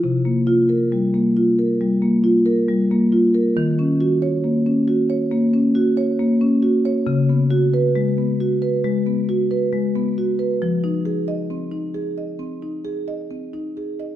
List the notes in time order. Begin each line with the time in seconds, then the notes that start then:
0.04 C3
0.25 A#3
0.47 F4
0.69 A#4
0.92 G3
1.14 A#3
1.37 F4
1.59 A#4
1.81 G3
2.02 A#3
2.24 F4
2.46 A#4
2.69 G3
2.91 A#3
3.12 F4
3.34 A#4
3.57 D#3
3.79 C#4
4.01 F#4
4.22 C#5
4.44 A#3
4.66 C#4
4.88 F#4
5.10 C#5
5.32 A#3
5.54 C#4
5.75 F#4
5.97 C#5
6.19 A#3
6.41 C#4
6.63 F#4
6.85 C#5
7.07 C#3
7.29 B3
7.50 F#4
7.74 B4
7.95 G#3
8.18 B3
8.40 F#4
8.62 B4
8.84 G#3
9.06 B3
9.29 F#4
9.51 B4
9.73 G#3
9.95 B3
10.18 F#4
10.39 B4
10.62 F3
10.84 D#4
11.05 G#4
11.28 D#5
11.50 C4
11.72 D#4
11.94 G#4
12.18 D#5
12.39 C4
12.62 D#4
12.85 G#4
13.08 D#5
13.31 C4
13.54 D#4
13.77 G#4
14.00 D#5